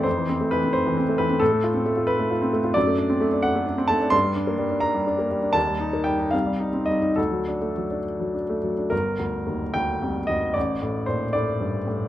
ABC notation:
X:1
M:6/8
L:1/16
Q:3/8=82
K:Flyd
V:1 name="Grand piano"
c4 B2 c4 B2 | A6 B2 z4 | [K:Gm] d6 ^f4 a2 | c'6 b6 |
a4 g2 f4 e2 | A6 z6 | B6 g4 e2 | d4 c2 d6 |]
V:2 name="Grand piano"
F,, E, C A, E, C2 E, C A, E, C | A,, A, F C A, F2 A, F C A, F | [K:Gm] ^F,, A, D C A, D2 A, D C A, D | G,, G, D B, G, D2 G, D B, G, D |
E,, G, E B, G, E C,, G, E C G, E | D,, ^F, D A, F, D2 F, D A, F, D | G,,,2 D,,2 E,,2 D,,2 C,,2 D,,2 | A,,,2 A,,2 B,,2 A,,2 G,,2 A,,2 |]